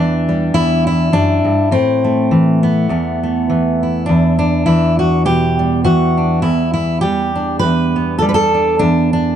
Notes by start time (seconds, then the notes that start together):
Already playing: E2 E3 G3 D4
0.29 G3
0.54 E2 E4
0.87 E4
1.13 F#2 D4
1.44 G2
1.71 A2 C4
2.04 A3
2.31 E3
2.63 B3
2.89 E2 A3
3.23 A3
3.50 E3
3.83 E4
4.06 E2 D4
4.39 D4
4.66 E3 E4
4.99 F#4
5.25 B2 G4
5.59 G3
5.84 E3 F#4
6.18 D4
6.42 E2 E4
6.74 E4
7.01 G3 G4
7.36 D4
7.59 E2 B4
7.96 B3
8.19 G3 A4
8.29 B4
8.34 A4
8.54 D4
8.79 E2 D4
9.13 D4